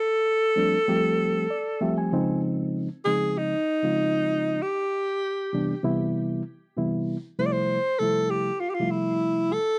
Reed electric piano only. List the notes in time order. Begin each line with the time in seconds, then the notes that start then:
0.56 F3 G3 A3 C4 D4
0.88 F3 G3 A3 C4 G4
1.50 D5
1.81 F3 G3 A3 C4 G4 E5
1.98 G#5
2.12 C#3 F3 G#3 C4 D#4
3.05 C#3 F3 G#3 C4 D#4
3.83 C#3 F3 G#3 C4 F4
5.53 C3 E3 G3 B3 D4
5.83 C3 E3 G3 B3 E4
6.77 C3 E3 G3 B3 E4
7.39 C3 F3 G3 A3 E4
8.00 C3 F3 G3 A3 E4
8.79 C3 F3 G3 A3 E4